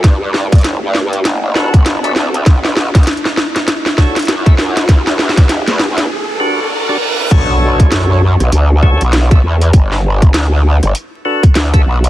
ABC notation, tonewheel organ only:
X:1
M:4/4
L:1/16
Q:"Swing 16ths" 1/4=99
K:Bm
V:1 name="Tonewheel organ"
z8 z2 [DFAB] z2 [DFAe] z2 | z8 z2 [DFAc] z2 [DFAe] z2 | z8 z2 [DFGB] z2 [DFGd] z2 | [DFAc]6 z4 [DFAc] z2 [DFAe] z2 |
z8 z2 [DFAB] z2 [DFAe] z2 |]